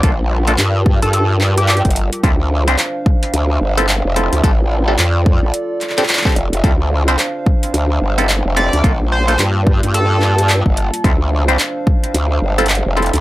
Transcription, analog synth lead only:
X:1
M:4/4
L:1/16
Q:"Swing 16ths" 1/4=109
K:Dm
V:1 name="Analog synth lead"
z6 z A A z2 G G z3 | z16 | z16 | z12 z2 d2 |
z2 c c z4 A4 z4 | z16 |]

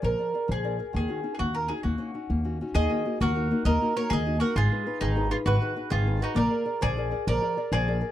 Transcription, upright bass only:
X:1
M:6/8
L:1/8
Q:3/8=133
K:Ebm
V:1 name="Upright bass" clef=bass
B,,, z2 B,,,3 | E,, z2 E,,3 | E,, z2 E,,3 | E,, z2 E,,3 |
E,, z2 E,,3 | A,,, z2 A,,,3 | A,,, z2 A,,,3 | B,,, z2 B,,,3 |
B,,, z2 B,,,3 |]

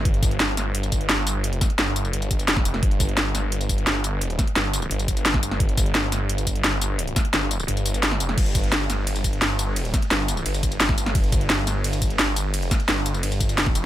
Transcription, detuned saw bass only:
X:1
M:4/4
L:1/8
Q:1/4=173
K:Fmix
V:1 name="Detuned saw bass" clef=bass
G,,,3 G,,,3 G,,,2- | G,,, z G,,,2 G,,,3 F,,, | G,,,3 G,,,3 G,,,2- | G,,, z G,,,2 G,,,4 |
G,,,3 G,,,3 G,,,2- | G,,, z G,,,2 G,,,3 F,,, | G,,,3 G,,,3 G,,,2- | G,,, z G,,,2 G,,,4 |
G,,,3 G,,,3 G,,,2- | G,,, z G,,,2 G,,,3 F,,, |]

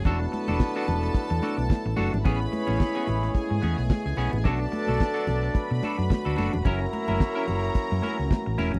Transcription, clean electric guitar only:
X:1
M:4/4
L:1/16
Q:"Swing 16ths" 1/4=109
K:Bdor
V:1 name="Clean electric guitar"
[DFA] z2 [DFA] z [DFA] z4 [DFA] z3 [DFA] z | [B,CG] z2 [B,CG] z [B,CG] z4 [B,CG] z3 [B,CG] z | [DFA] z2 [DFA] z [DFA] z4 [DFA] z2 [DFA] [DFA] z | [CE^A] z2 [CEA] z [CEA] z4 [CEA] z3 [CEA] z |]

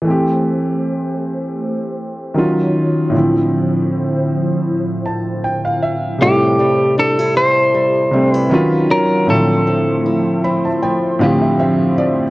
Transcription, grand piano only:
X:1
M:4/4
L:1/16
Q:"Swing 16ths" 1/4=78
K:Am
V:1 name="Grand piano"
z16 | z8 z2 a2 g f e2 | z16 | z6 b a g2 f e e2 d2 |]
V:2 name="Grand piano" clef=bass
[E,A,CG]12 [^D,^F,^C^E]4 | [A,,D,F,CE]16 | [C,G,A,^DE]8 z2 [C,G,A,C]2 [^D,^F,^C^E]4 | [A,,D,F,CE]8 z2 [A,,D,F,CG]6 |]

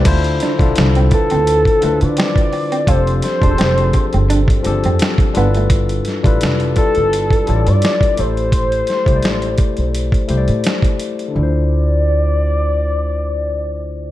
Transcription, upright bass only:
X:1
M:4/4
L:1/16
Q:"Swing 16ths" 1/4=85
K:Ddor
V:1 name="Upright bass" clef=bass
D,,2 z B,,, C,,2 z D,,2 z D,, D, z4 | F,,,2 z E,,, F,,,2 z G,,,2 z G,,, F,, z2 G,,,2- | G,,,2 z A,,, F,,,2 z G,,,2 z A,,, G,, z2 A,,,2- | A,,,2 z C,, A,,,2 z B,,,2 z C,, A,, z4 |
D,,16 |]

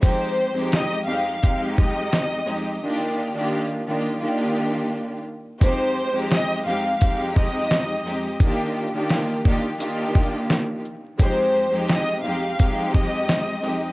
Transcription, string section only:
X:1
M:4/4
L:1/16
Q:"Swing 16ths" 1/4=86
K:Fdor
V:1 name="String section"
[F,,A,CEG]3 [F,,A,CEG]3 [F,,A,CEG]2 [F,,A,CEG]6 [F,,A,CEG]2 | [E,B,DFG]3 [E,B,DFG]3 [E,B,DFG]2 [E,B,DFG]6 z2 | [F,,A,CEG]3 [F,,A,CEG]3 [F,,A,CEG]2 [F,,A,CEG]6 [F,,A,CEG]2 | [E,B,DFG]3 [E,B,DFG]3 [E,B,DFG]2 [E,B,DFG]6 z2 |
[F,,A,CEG]3 [F,,A,CEG]3 [F,,A,CEG]2 [F,,A,CEG]6 [F,,A,CEG]2 |]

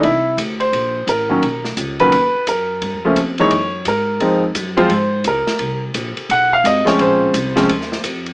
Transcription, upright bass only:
X:1
M:4/4
L:1/8
Q:"Swing" 1/4=172
K:Bbm
V:1 name="Upright bass" clef=bass
C,,2 =D,,2 B,,,2 =A,,,2 | =B,,,2 ^C,,2 ^D,, z ^F,,2 | (3=G,, F,, D,, F,,2 _G,,2 A,,2 | F,,2 G,,2 A,,2 D,, z |
C,,2 B,,, z =B,,,2 A,,, z | B,,,2 C,,2 E,,2 F,,2 |]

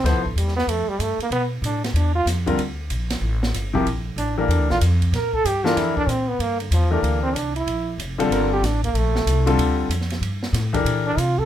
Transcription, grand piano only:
X:1
M:4/4
L:1/8
Q:"Swing" 1/4=189
K:Gmix
V:1 name="Grand piano"
[F,B,EAc] z6 z | z6 z [D,G,CF_B] | [K:Gdor] z6 z [C,F,B,EG] | z3 [E,DGAB]3 z2 |
z3 [E,DGAB]3 z2 | z3 [E,DGAB]3 z2 | z3 [D,G,CFA]3 z2 | z3 [D,G,CFA]3 z2 |
z3 [E,DGAB]3 z2 |]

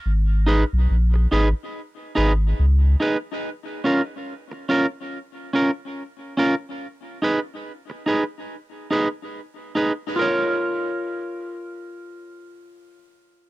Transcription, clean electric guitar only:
X:1
M:4/4
L:1/8
Q:"Swing 16ths" 1/4=71
K:Bbphr
V:1 name="Clean electric guitar"
z [EAc] z [EAc] z [EAc] z [EAc] | z [DFB] z [DFB] z [DFB] z [DFB] | z [EAc] z [EAc] z [EAc] z [EAc] | [FBd]8 |]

